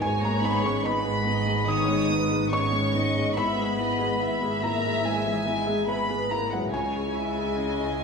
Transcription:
0.01 double bass section G#1, felt piano G#2 G#5, cello section G#2, french horn section G#3, viola section B3 D#4, violin section C#5 G#5
0.22 felt piano G#3 A#5, viola section G#3 B3, french horn section A#3, violin section A#5
0.42 french horn section B3, viola section B3 D#4, felt piano D#4 B5, violin section B5
0.62 viola section G#3 B3, french horn section C#4, felt piano G#4 C#6, violin section C#6
0.83 french horn section B3, viola section B3 D#4, violin section B4 B5, felt piano D#5 B5
1.04 viola section G#3 B3, felt piano G#4
1.26 viola section B3 D#4, felt piano D#4, violin section D#5
1.47 felt piano G#3, viola section G#3 B3
1.67 felt piano D#3 D#6, viola section B3 D#4, french horn section D#4, violin section C#5 D#6
1.88 viola section G#3 B3, felt piano G#3
2.09 viola section B3 D#4, felt piano D#4, violin section B4
2.30 viola section G#3 B3, felt piano G#4
2.51 viola section B3 D#4, french horn section C#4, violin section C#5 C#6, felt piano D#5 C#6
2.73 viola section G#3 B3, felt piano G#4
2.93 viola section B3 D#4, felt piano D#4, violin section D#5
3.15 viola section G#3 B3, felt piano G#3
3.35 double bass section G#1, cello section G#2, felt piano G#2 B5, viola section B3 E4, french horn section B3, violin section E5 B5
3.57 viola section G#3 G#4, felt piano G#3
3.78 viola section B3 E4, felt piano E4, violin section D#5
4.00 viola section G#3 G#4, felt piano G#4
4.21 viola section B3 E4, violin section E5, felt piano E5
4.41 viola section G#3 G#4, felt piano G#4
4.62 french horn section A#3, viola section B3 E4, felt piano E4 A#5, violin section A#5
4.82 viola section G#3 G#4, felt piano G#3
5.03 felt piano G#2 G#5, french horn section G#3, viola section B3 E4, violin section G#5
5.25 felt piano E3, viola section G#3 G#4
5.46 viola section B3 E4, felt piano E4
5.67 viola section G#3 G#4, felt piano G#4
5.88 viola section B3 E4, french horn section B3, violin section B4 B5, felt piano E5 B5
6.09 viola section G#3 G#4, felt piano G#4
6.31 french horn section A#3, viola section B3 E4, felt piano E4 A#5, violin section A#5
6.52 french horn section F#3, felt piano G#3 F#5, viola section G#3 G#4, violin section F#5
6.72 double bass section C#2, felt piano C#2 G#5, cello section C#3, viola section G#3 E4, french horn section G#3, violin section C#5 G#5
6.95 felt piano G#3
7.16 felt piano E4, violin section E5
7.38 felt piano G#4
7.58 felt piano E4, violin section D#5
7.81 felt piano G#4

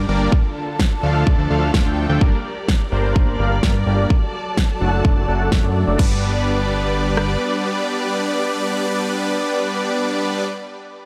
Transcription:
Already playing: string section A#3 D4 G4, sub drop
0.09 analog synth bass G1, supersaw synth G3 A#3 D4 A#4 D5
0.32 string section D3 D4 F4 A4 A5, kick
0.80 kick, snare
1.03 analog synth bass D2, supersaw synth F3 A3 D4 A4 F5
1.27 analog synth bass D2, kick
1.39 analog synth bass D2, supersaw synth F3 A3 D4 A4 D5
1.50 analog synth bass D2, supersaw synth F3 A3 D4 A4 F5
1.74 analog synth bass D2, supersaw synth F3 A3 D4 A4 F5, kick, snare
1.86 analog synth bass D2, supersaw synth F3 A3 D4 A4 G5
2.09 analog synth bass D2, supersaw synth F3 A3 D4 A4 G5
2.21 analog synth bass G1, supersaw synth G3 A#3 D4 A#4 D5, string section G4 A#4 D5, kick
2.69 kick, snare
2.92 analog synth bass G1, supersaw synth G3 A#3 D4 A#4 C5
3.16 kick
3.39 analog synth bass G1, supersaw synth G3 A#3 D4 A#4 F5
3.63 analog synth bass G2, supersaw synth G3 A#3 D4 A#4 D5, kick, snare
3.87 analog synth bass G1, supersaw synth G3 A#3 D4 A#4 D5
4.10 string section F#3 F#4 A4 A5, kick
4.57 kick, snare
4.81 analog synth bass F#1, supersaw synth F#3 A3 D4 A4 F#5
5.05 analog synth bass F#1, supersaw synth F#3 A3 D4 A4 D5, kick
5.17 analog synth bass F#1, supersaw synth F#3 A3 D4 A4 D5
5.28 analog synth bass F#1, supersaw synth F#3 A3 D4 A4 F#5
5.52 analog synth bass F#1, supersaw synth A3, kick, snare
5.64 analog synth bass F#2, supersaw synth F#3 A3 D4 A4 D5
5.87 analog synth bass F#1, supersaw synth F#3 A3 D4 A4 D5
5.99 analog synth bass G1, supersaw synth G3 B3 D4 B4 D5, string section G4 B4 D5, kick, crash
7.17 cross-stick

